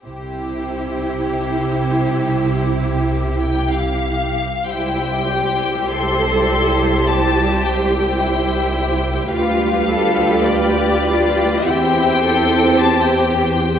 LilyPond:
<<
  \new Staff \with { instrumentName = "Violin section" } { \time 4/4 \key c \major \tempo 4 = 53 c''2. g''16 f''8. | g''4 c'''4 a''8 g''4. | f''4 d''4 g''4 a''16 g''8. | }
  \new Staff \with { instrumentName = "Violin section" } { \time 4/4 \key c \major << { g'1 | c''1 | b'2 c''2 | } \\ { r1 | g'1 | g'1 | } >> }
  \new Staff \with { instrumentName = "Cello section" } { \time 4/4 \key c \major c1 | e'8 g'8 a'4 g'4 e'4 | f'8 a'8 g'8 f'8 e'8 a'8 g'4 | }
  \new Staff \with { instrumentName = "Viola section" } { \time 4/4 \key c \major e'1 | <g e'>1 | <g f'>2 <c' e'>2 | }
  \new Staff \with { instrumentName = "Double bass section" } { \clef bass \time 4/4 \key c \major c,1 | c,1 | d,2 e,2 | }
>>